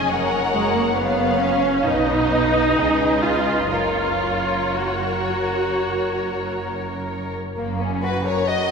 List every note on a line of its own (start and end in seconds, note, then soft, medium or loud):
0.08 1.82 F#1 medium
0.08 1.83 F#2 medium
0.08 0.97 A#4 soft
0.08 0.96 C#5 soft
0.08 0.97 F#5 soft
0.52 0.73 G#3 medium
0.76 0.97 A#3 medium
0.96 1.40 B3 medium
0.96 1.87 C#5 soft
0.96 1.87 F5 soft
1.41 1.86 C#4 medium
1.86 2.77 B1 soft
1.86 2.77 B2 soft
1.86 3.24 D#4 medium
1.86 2.75 B4 soft
1.86 2.77 D#5 soft
2.77 3.71 C#2 soft
2.77 3.71 C#3 soft
2.77 3.73 G#4 soft
2.77 3.71 B4 soft
2.77 3.71 D#5 soft
3.25 3.70 F4 medium
3.72 7.33 F#1 soft
3.72 7.33 F#2 soft
3.72 4.69 F4 medium
3.72 7.33 A#4 soft
3.72 7.36 C#5 soft
4.72 6.64 F#4 soft
7.56 8.33 F#1 soft
7.56 8.33 F#2 medium
7.56 7.78 A#3 soft
7.79 8.03 C#4 soft
8.01 8.25 F#4 soft
8.01 8.25 B4 medium
8.24 8.48 A#4 soft
8.28 8.50 C#5 medium
8.46 8.70 F#4 soft
8.46 8.71 D#5 medium